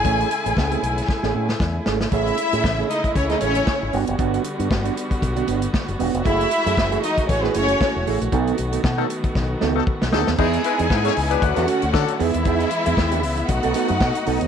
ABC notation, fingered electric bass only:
X:1
M:4/4
L:1/16
Q:"Swing 16ths" 1/4=116
K:Alyd
V:1 name="Fingered electric bass" clef=bass
A,,,2 z A,,, C,,2 B,,,2 z A,,, A,,2 E,,2 G,,,2 | A,,,2 z A,, A,,,2 z2 C,,2 A,,,2 z G,,, =G,,, F,,, | =G,,,2 z =G,, G,,,2 z2 B,,,2 G,,,2 z F,,, E,,, =F,,, | F,,,2 z F,, F,,,2 z2 A,,,2 F,,,2 z E,,, A,,, ^A,,, |
B,,,2 B,,,2 B,,2 z2 B,,,2 C,,2 z B,,, =D,, ^D,, | E,,2 z E,, G,,2 C,,2 =D,, E,, z D,, =D, z E,, ^D,, | E,,2 z E,, D,,2 C,,2 B,,, B,,, z F,, B,, z B,,, D,, |]